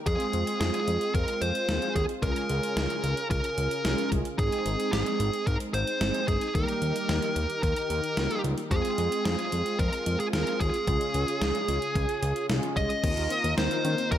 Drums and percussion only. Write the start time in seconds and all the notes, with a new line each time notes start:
0.06 kick, closed hi-hat
0.20 closed hi-hat
0.33 closed hi-hat
0.47 closed hi-hat
0.61 snare, closed hi-hat
0.74 closed hi-hat
0.88 closed hi-hat
1.01 closed hi-hat
1.15 kick, closed hi-hat
1.28 closed hi-hat
1.42 closed hi-hat
1.55 closed hi-hat
1.69 snare, closed hi-hat
1.82 closed hi-hat
1.96 kick, closed hi-hat
2.09 closed hi-hat
2.23 kick, closed hi-hat
2.36 closed hi-hat
2.49 closed hi-hat
2.63 closed hi-hat
2.77 snare, closed hi-hat
2.90 closed hi-hat
3.04 closed hi-hat
3.17 closed hi-hat
3.31 kick, closed hi-hat
3.44 closed hi-hat
3.58 closed hi-hat
3.71 closed hi-hat
3.85 snare, closed hi-hat
3.98 closed hi-hat
4.12 kick, closed hi-hat
4.25 closed hi-hat
4.39 kick, closed hi-hat
4.52 closed hi-hat
4.66 closed hi-hat
4.80 closed hi-hat
4.93 snare, closed hi-hat
5.06 closed hi-hat
5.20 closed hi-hat
5.34 closed hi-hat
5.47 kick, closed hi-hat
5.60 closed hi-hat
5.74 closed hi-hat
5.87 closed hi-hat
6.01 snare, closed hi-hat
6.14 closed hi-hat
6.28 kick, closed hi-hat
6.41 closed hi-hat
6.55 kick, closed hi-hat
6.68 closed hi-hat
6.82 closed hi-hat
6.96 closed hi-hat
7.09 snare, closed hi-hat
7.22 closed hi-hat
7.36 closed hi-hat
7.50 closed hi-hat
7.63 kick, closed hi-hat
7.76 closed hi-hat
7.90 closed hi-hat
8.04 closed hi-hat
8.17 snare, closed hi-hat
8.31 closed hi-hat
8.44 closed hi-hat
8.58 closed hi-hat
8.71 kick, closed hi-hat
8.85 closed hi-hat
8.98 closed hi-hat
9.12 closed hi-hat
9.25 snare, closed hi-hat
9.39 closed hi-hat
9.52 closed hi-hat
9.66 closed hi-hat
9.79 kick, closed hi-hat
9.93 closed hi-hat
10.06 closed hi-hat
10.20 closed hi-hat
10.33 snare, closed hi-hat
10.47 closed hi-hat
10.60 kick, closed hi-hat
10.74 closed hi-hat
10.87 kick, closed hi-hat
11.01 closed hi-hat
11.14 closed hi-hat
11.28 closed hi-hat
11.42 snare, closed hi-hat
11.55 closed hi-hat
11.68 closed hi-hat
11.82 closed hi-hat
11.96 kick, closed hi-hat
12.09 closed hi-hat
12.23 closed hi-hat
12.36 closed hi-hat
12.49 snare, closed hi-hat
12.63 closed hi-hat
12.77 kick, closed hi-hat
12.90 closed hi-hat
13.04 kick, closed hi-hat, crash
13.17 closed hi-hat
13.30 closed hi-hat
13.44 closed hi-hat
13.58 snare, closed hi-hat
13.71 closed hi-hat
13.85 closed hi-hat
13.98 closed hi-hat
14.12 kick, closed hi-hat